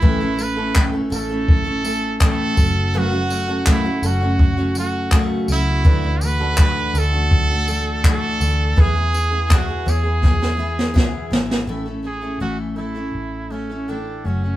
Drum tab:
TB |--x---x---x---x-|--x---x---x---x-|--x---x---x---x-|--x---x---------|
CP |----x-------x---|----x-------x---|----x-------x---|----x-----------|
SD |----------------|----------------|----------------|--------oo-oo-oo|
BD |o---o---o---o-o-|----o---o---o---|o---o---o---o---|o---o---o---o---|

TB |----------------|
CP |----------------|
SD |----------------|
BD |----------------|